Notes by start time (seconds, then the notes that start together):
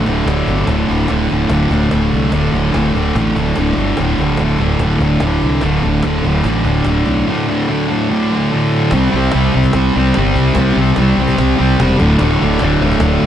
Already playing: D2
0.06 D1 A2 D3, cajon bass
0.25 D1 D2 A2, cajon bass, cajon slap
0.30 D3
0.48 G1, cajon bass
0.66 D1 D2 A2 D3, cajon bass, cajon slap
0.87 D1 A2 D3, cajon bass
1.08 D1 D2 A2, cajon bass, cajon slap
1.12 D3
1.29 D1 A2 D3, cajon bass
1.48 D1 D2 A2 D3, cajon bass, cajon slap
1.70 D1 A2 D3, cajon bass
1.89 D2 A2, cajon bass, cajon slap
1.94 D1 D3
2.12 C2, cajon bass
2.30 D1 D2 A2 D3, cajon bass, cajon slap
2.53 D1 A2 D3, cajon bass
2.72 D1 D2 A2 D3, cajon bass, cajon slap
2.94 D1 A2 D3, cajon bass
3.15 A1 D2 A2, cajon bass, cajon slap
3.19 D3
3.36 D1 A2 D3, cajon bass
3.56 D1 D2, cajon bass, cajon slap
3.60 A2 D3
3.77 G1, cajon bass
3.97 D1 D2, cajon bass, cajon slap
4.01 A2 D3
4.18 D1 D3, cajon bass
4.25 A2
4.37 D1 D2, cajon bass, cajon slap
4.43 A2 D3
4.58 D1 D3, cajon bass
4.64 A2
4.79 D1 D2, cajon bass, cajon slap
4.84 A2 D3
5.00 D1 A2 D3, cajon bass
5.20 D1 D2, cajon bass, cajon slap
5.26 A2 D3
5.41 C2, cajon bass
5.61 D1 D2 A2, cajon bass, cajon slap
5.66 D3
5.82 D1 D3, cajon bass
5.88 A2
6.03 D1 D2 A2, cajon bass, cajon slap
6.08 D3
6.24 D1 D3, cajon bass
6.28 A2
6.44 A1 D2, cajon bass, cajon slap
6.48 A2 D3
6.65 D1 D3, cajon bass
6.70 A2
6.84 D1 D2, cajon bass, cajon slap
6.90 A2 D3
7.06 B1, cajon bass
7.27 D2 A2 D3
7.47 A2 D3
7.69 D2 A2 D3
7.88 A2 D3
8.10 D2 A2 D3
8.32 A2 D3
8.52 D2 A2 D3
8.91 C2 C3 G3, cajon bass, cajon slap
8.97 C4
9.13 C2 G3 C4
9.32 C2 C3 G3, cajon slap
9.36 C4
9.55 C2 G3 C4
9.64 cajon bass
9.73 C2, cajon bass, cajon slap
9.96 C2 G3 C4
10.14 G1 C3 G3, cajon slap
10.19 C4
10.36 C2, cajon bass
10.55 C2 C3, cajon bass, cajon slap
10.60 G3 C4
10.76 C2 C4
10.82 G3
10.96 C2 C3, cajon slap
11.01 G3 C4
11.17 C2 C4
11.22 G3
11.28 cajon bass
11.38 C2, cajon bass, cajon slap
11.59 C2 G3 C4
11.79 E1 C3 G3 C4, cajon slap
11.99 D1 A2 D3, cajon bass
12.03 D2
12.19 D1 D2 A2, cajon slap
12.23 D3
12.41 D1 A2 D3
12.59 D1 D2, cajon slap
12.64 A2 D3
12.81 D1 D3
12.86 A2
12.91 cajon bass
13.00 D1, cajon bass, cajon slap